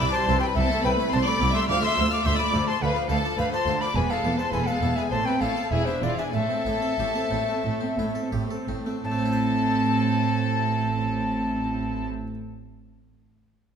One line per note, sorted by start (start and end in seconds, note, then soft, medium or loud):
0.00 0.08 C2 medium
0.00 0.09 C2 medium
0.00 0.25 C2 medium
0.00 0.13 E3 medium
0.00 0.14 B4 medium
0.00 0.13 D5 medium
0.00 0.11 B5 loud
0.00 0.14 D6 loud
0.12 0.28 G3 medium
0.12 0.41 C5 medium
0.12 0.29 C5 medium
0.12 0.40 A5 medium
0.16 0.42 C6 loud
0.28 0.36 C2 medium
0.28 0.37 C2 medium
0.28 0.54 C2 medium
0.28 0.42 E3 medium
0.28 0.43 E4 medium
0.40 0.56 G3 medium
0.40 0.56 C4 medium
0.40 0.56 B4 medium
0.40 0.46 G5 medium
0.40 0.56 B5 medium
0.55 0.64 C2 medium
0.55 0.65 C2 medium
0.55 0.82 C2 medium
0.55 0.69 C4 medium
0.55 0.84 A4 loud
0.55 0.83 E5 medium
0.55 0.84 A5 loud
0.70 0.84 A3 medium
0.70 0.85 E4 medium
0.83 0.92 C2 medium
0.83 0.93 C2 medium
0.83 1.10 C2 medium
0.83 0.97 C4 medium
0.83 0.99 A4 medium
0.83 1.11 B4 medium
0.83 0.91 G5 medium
0.83 1.11 B5 loud
0.97 1.11 A3 medium
0.97 1.13 E4 medium
1.11 1.21 C2 medium
1.11 1.38 C2 medium
1.11 1.24 C4 medium
1.11 1.26 D4 soft
1.11 1.25 C5 loud
1.11 1.19 A5 medium
1.11 1.26 C6 loud
1.25 1.40 A3 medium
1.25 1.41 A4 medium
1.25 1.53 D5 medium
1.25 1.54 B5 medium
1.25 1.54 D6 loud
1.39 1.66 C2 medium
1.39 1.49 C2 medium
1.39 1.53 C4 medium
1.39 1.55 E4 medium
1.54 1.68 A3 medium
1.54 1.68 E5 medium
1.54 1.68 C6 medium
1.54 1.69 E6 loud
1.68 1.94 D2 medium
1.68 1.77 D2 medium
1.68 1.81 F3 medium
1.68 1.82 F5 loud
1.68 1.82 D6 loud
1.68 1.82 F6 loud
1.82 1.96 A3 medium
1.82 1.97 A4 soft
1.82 2.10 E5 medium
1.82 2.11 C6 loud
1.82 2.11 E6 loud
1.96 2.22 D2 medium
1.96 2.06 D2 medium
1.96 2.10 F3 medium
1.96 2.11 D4 medium
2.11 2.25 A3 medium
2.11 2.25 D5 medium
2.11 2.24 F5 medium
2.11 2.28 D6 medium
2.11 2.25 F6 loud
2.24 2.50 D2 medium
2.24 2.33 D2 medium
2.24 2.34 D2 medium
2.24 2.37 F3 medium
2.24 2.39 C5 soft
2.24 2.38 E5 loud
2.24 2.38 C6 medium
2.24 2.38 E6 loud
2.38 2.52 A3 medium
2.38 2.67 D5 medium
2.38 2.54 D5 medium
2.38 2.69 B5 medium
2.38 2.68 D6 loud
2.53 2.61 D2 medium
2.53 2.62 D2 medium
2.53 2.79 D2 medium
2.53 2.67 F3 medium
2.53 2.68 A4 medium
2.67 2.81 A3 medium
2.67 2.82 D4 soft
2.67 2.73 C5 medium
2.67 2.84 A5 medium
2.67 2.82 C6 medium
2.81 2.90 D2 medium
2.81 3.07 D2 medium
2.81 2.90 D2 medium
2.81 2.94 D3 medium
2.81 3.09 B4 medium
2.81 2.86 F#5 medium
2.81 2.90 B5 loud
2.85 3.10 F5 medium
2.95 3.09 F3 medium
2.95 3.10 F4 soft
3.09 3.18 D2 medium
3.09 3.35 D2 medium
3.09 3.18 D2 medium
3.09 3.23 D3 medium
3.09 3.37 A4 medium
3.09 3.24 B4 medium
3.09 3.17 F5 medium
3.09 3.38 A5 medium
3.24 3.38 F3 medium
3.24 3.39 D5 medium
3.37 3.46 D2 medium
3.37 3.64 D2 medium
3.37 3.51 D3 medium
3.37 3.51 B4 loud
3.37 3.52 C5 soft
3.37 3.52 F5 medium
3.37 3.45 B5 loud
3.52 3.67 F3 medium
3.52 3.80 C5 medium
3.52 3.68 D5 medium
3.52 3.83 A5 medium
3.52 3.80 C6 loud
3.67 3.75 D2 medium
3.67 3.93 D2 medium
3.67 3.81 D3 medium
3.67 3.82 F4 soft
3.81 3.95 F3 medium
3.81 3.95 D4 medium
3.81 3.87 D5 medium
3.81 3.97 B5 medium
3.81 3.96 D6 medium
3.95 4.03 E1 medium
3.95 4.04 E2 medium
3.95 4.21 E2 medium
3.95 4.08 B3 medium
3.95 4.01 B4 medium
3.95 4.12 G#5 medium
3.95 4.10 B5 loud
4.10 4.24 G#3 medium
4.10 4.25 E4 medium
4.10 4.37 A4 medium
4.10 4.38 F5 medium
4.10 4.39 A5 medium
4.24 4.32 E1 medium
4.24 4.32 E2 medium
4.24 4.50 E2 medium
4.24 4.38 B3 medium
4.24 4.39 G#4 medium
4.38 4.52 G#3 medium
4.38 4.54 B4 medium
4.38 4.52 C5 medium
4.38 4.52 A5 medium
4.38 4.54 C6 medium
4.52 4.61 E1 medium
4.52 4.79 E2 medium
4.52 4.62 E2 medium
4.52 4.66 B3 medium
4.52 4.67 A4 soft
4.52 4.66 B4 medium
4.52 4.68 G#5 medium
4.52 4.68 B5 medium
4.66 4.82 G#3 medium
4.66 4.96 A4 medium
4.66 4.83 B4 medium
4.66 4.97 F5 medium
4.66 4.97 A5 medium
4.81 4.90 E1 medium
4.81 5.09 E2 medium
4.81 4.91 E2 medium
4.81 4.96 B3 medium
4.81 4.97 E4 soft
4.96 5.11 G#3 medium
4.96 5.12 B3 soft
4.96 5.02 G#4 medium
4.96 5.10 E5 medium
4.96 5.12 G#5 medium
5.10 5.19 A1 medium
5.10 5.20 A2 medium
5.10 5.39 A2 medium
5.10 5.25 A3 medium
5.10 5.16 C5 medium
5.10 5.27 A5 medium
5.10 5.27 C6 loud
5.25 5.41 C4 medium
5.25 5.42 C4 soft
5.25 5.40 B4 medium
5.25 5.42 G5 medium
5.25 5.42 B5 medium
5.40 5.49 A1 medium
5.40 5.49 A2 medium
5.40 5.69 A2 medium
5.40 5.56 A3 medium
5.40 5.57 E4 soft
5.40 5.70 A4 medium
5.40 5.73 F5 medium
5.40 5.71 A5 medium
5.56 5.71 C4 medium
5.56 5.72 A4 medium
5.71 5.79 E1 medium
5.71 5.80 E2 medium
5.71 6.00 E2 medium
5.71 5.85 E4 medium
5.71 5.86 G#4 medium
5.71 5.87 E5 medium
5.71 5.87 G#5 medium
5.85 6.02 D4 medium
5.85 6.03 E4 soft
5.85 6.02 E4 medium
5.85 6.05 C5 medium
5.85 6.03 E5 medium
6.01 6.11 E1 medium
6.01 6.10 E2 medium
6.01 6.31 E2 medium
6.01 6.18 E4 soft
6.01 6.17 F4 medium
6.01 6.19 B4 soft
6.01 6.17 D5 medium
6.01 6.18 F5 medium
6.17 6.33 D4 medium
6.17 6.34 G#4 medium
6.17 6.34 D5 medium
6.17 6.23 E5 medium
6.17 6.34 G#5 medium
6.33 6.42 A1 medium
6.33 6.62 A2 medium
6.33 6.42 A2 medium
6.33 6.48 A3 medium
6.33 8.29 A4 medium
6.33 8.28 E5 medium
6.33 8.33 A5 medium
6.49 6.65 C4 medium
6.49 6.67 C4 soft
6.65 6.74 A1 medium
6.65 6.73 A2 medium
6.65 6.95 A2 medium
6.65 6.82 A3 medium
6.65 6.83 E4 soft
6.82 6.98 C4 medium
6.82 6.99 A4 soft
6.98 7.06 A1 medium
6.98 7.06 A2 medium
6.98 7.28 A2 medium
6.98 7.13 A3 medium
6.98 7.15 G4 soft
7.14 7.31 C4 medium
7.14 7.32 A4 soft
7.31 7.39 A1 medium
7.31 7.61 A2 soft
7.31 7.39 A2 medium
7.31 7.47 A3 medium
7.31 7.48 C4 soft
7.48 7.65 A3 soft
7.48 7.64 C4 medium
7.63 7.72 A1 medium
7.63 7.94 A2 medium
7.63 7.72 A2 medium
7.63 7.80 A3 medium
7.81 7.98 C4 soft
7.81 7.98 C4 medium
7.98 8.06 A1 medium
7.98 8.06 A2 medium
7.98 8.29 A2 soft
7.98 8.15 A3 medium
7.98 8.16 E4 soft
8.15 8.33 C4 medium
8.15 8.33 A4 soft
8.32 8.41 A1 medium
8.32 8.40 A2 medium
8.32 8.64 A2 medium
8.32 8.49 A3 medium
8.32 8.50 G4 soft
8.50 8.68 C4 soft
8.50 8.69 A4 medium
8.68 8.77 A1 medium
8.68 8.76 A2 medium
8.68 9.00 A2 soft
8.68 8.86 A3 soft
8.68 8.87 C4 soft
8.86 9.04 A3 soft
8.86 9.04 C4 soft
9.03 12.06 A1 medium
9.03 12.06 A2 medium
9.03 12.06 C4 medium
9.03 12.05 A4 medium
9.03 12.05 A5 medium
9.03 12.06 A5 medium
9.11 12.13 A3 medium
9.19 12.21 C4 medium
9.25 12.27 E4 medium
9.33 12.34 C5 medium